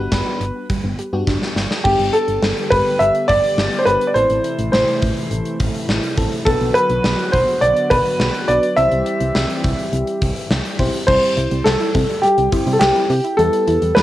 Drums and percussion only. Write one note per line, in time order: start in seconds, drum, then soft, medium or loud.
0.12 kick loud
0.12 snare loud
0.12 closed hi-hat medium
0.41 closed hi-hat medium
0.70 kick loud
0.70 closed hi-hat medium
0.99 closed hi-hat medium
1.27 kick loud
1.27 snare medium
1.42 snare medium
1.56 snare medium
1.71 snare medium
1.85 kick loud
1.85 crash medium
1.99 closed hi-hat medium
2.14 closed hi-hat medium
2.28 closed hi-hat medium
2.43 snare loud
2.57 closed hi-hat soft
2.71 kick medium
2.71 closed hi-hat medium
2.86 closed hi-hat soft
3.00 closed hi-hat medium
3.15 closed hi-hat medium
3.29 kick medium
3.29 closed hi-hat medium
3.44 closed hi-hat soft
3.58 snare loud
3.72 closed hi-hat medium
3.87 closed hi-hat medium
4.01 closed hi-hat medium
4.16 closed hi-hat medium
4.30 closed hi-hat medium
4.44 closed hi-hat medium
4.59 closed hi-hat medium
4.73 snare loud
4.88 closed hi-hat medium
5.02 kick medium
5.02 closed hi-hat medium
5.17 closed hi-hat soft
5.31 closed hi-hat medium
5.45 closed hi-hat medium
5.60 kick medium
5.60 closed hi-hat medium
5.74 closed hi-hat medium
5.89 snare loud
6.03 closed hi-hat medium
6.17 kick medium
6.17 closed hi-hat medium
6.32 closed hi-hat medium
6.46 kick loud
6.46 closed hi-hat medium
6.61 closed hi-hat medium
6.75 closed hi-hat medium
6.90 closed hi-hat medium
7.04 snare loud
7.19 closed hi-hat medium
7.33 kick medium
7.33 closed hi-hat medium
7.48 closed hi-hat soft
7.62 closed hi-hat medium
7.76 closed hi-hat soft
7.91 kick medium
7.91 closed hi-hat medium
8.05 closed hi-hat medium
8.20 snare loud
8.34 closed hi-hat medium
8.48 closed hi-hat medium
8.63 closed hi-hat medium
8.77 closed hi-hat medium
8.91 closed hi-hat medium
9.06 closed hi-hat medium
9.20 closed hi-hat medium
9.35 snare loud
9.50 closed hi-hat medium
9.64 kick medium
9.64 closed hi-hat medium
9.79 closed hi-hat soft
9.93 closed hi-hat medium
10.07 closed hi-hat medium
10.22 kick medium
10.22 closed hi-hat medium
10.36 closed hi-hat medium
10.51 snare loud
10.65 closed hi-hat medium
10.79 kick medium
10.79 open hi-hat medium
10.94 closed hi-hat medium
11.08 kick loud
11.08 crash loud
11.22 closed hi-hat medium
11.37 closed hi-hat medium
11.51 closed hi-hat medium
11.66 snare loud
11.80 closed hi-hat medium
11.95 kick medium
11.95 closed hi-hat medium
12.09 closed hi-hat soft
12.23 closed hi-hat medium
12.38 closed hi-hat medium
12.52 kick medium
12.52 closed hi-hat medium
12.67 closed hi-hat medium
12.81 snare loud
12.81 clap loud
12.96 closed hi-hat medium
13.10 open hi-hat medium
13.25 closed hi-hat medium
13.39 closed hi-hat medium
13.53 closed hi-hat medium
13.68 closed hi-hat medium
13.82 closed hi-hat medium
13.97 snare loud